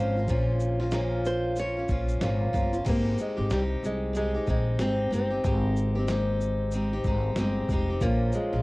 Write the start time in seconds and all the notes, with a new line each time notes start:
Already playing: G#1 F3 A#3 C#4 C5
0.00 F4
0.16 A#3 C#4 F4
0.28 A#1 A#2 F3 A#3 C#4 F4, kick, shaker
0.60 shaker
0.80 A#3 C#4 F4, snare
0.92 A#2 F3 A#3 C#4 F4, snare, shaker
1.25 C5, shaker
1.56 F3 A#3 C#4 F4 C#5, shaker
1.77 A#3 C#4 F4
1.89 A#1 F3 A#3 C#4 F4, kick, shaker
2.09 shaker
2.21 G#1 A#2 F3 A#3 C#4 F4, snare, shaker
2.53 G1 F3 A#3 C#4 F4, kick, shaker
2.73 A#3 C#4 F4, shaker
2.85 G#1 G#3 C4 D#4 G4, kick, crash, shaker
2.89 A#3
3.18 G#3, shaker
3.37 G#1 C4 D#4 G4
3.50 C2 G3 C4 D#4 G4, snare, shaker
3.83 C2 G#3, shaker
4.13 G#3 C4 D#4 G4, shaker
4.34 C4 D#4 G4
4.47 A#1 G#3 C4 D#4 G4, kick, shaker
4.79 G#1 G#3 C4 D#4 G4, snare, shaker
5.11 G1 G#3 C4 D#4 G4, shaker
5.30 C4 D#4 G4
5.44 G#1 G#3 C4 D#4 G4, kick, shaker
5.76 shaker
5.95 A#3 C4 D#4 G4
6.08 G#3 C4 D#4 G4, snare, shaker
6.41 shaker
6.72 G#3 C4 D#4, shaker
6.76 G4
6.93 C4 D#4 G4
7.04 G#1 G#3 C4 D#4, kick, shaker
7.09 G4
7.36 G1 G#3 C4 D#4, snare, shaker
7.40 G4
7.69 F1 G#3 C4 D#4, kick, shaker
7.74 G4
7.90 C4 D#4 G4
8.01 A#1 A#2 F3 A#3 C#4 F4, kick, shaker
8.32 G#3, shaker
8.53 A#1 A#3 C#4 F4